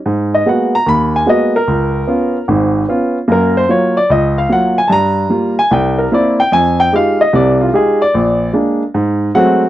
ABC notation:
X:1
M:4/4
L:1/8
Q:"Swing" 1/4=149
K:Ablyd
V:1 name="Grand piano"
z e _g b _c' a e B- | B4 z4 | B c _d =d e f _g a | [=ab]3 _a g B d g |
a g f e d F A d- | d2 z4 [_G_g]2 |]
V:2 name="Grand piano"
A,,2 [A,B,_C_G] z E,,2 [A,B,CG] z | _D,,2 [_C_DF] z [A,,,A,,]2 [CDF] z | [_G,,B,]2 [_G,B,F] z _D,,2 [G,B,F] z | G,,2 [G,B,F] z C,,2 [B,C=E] z |
F,,2 [A,EFG] z [C,,C,]2 [A,EFG] z | B,,,2 [A,B,D] z A,,2 [_G,A,=A,C] z |]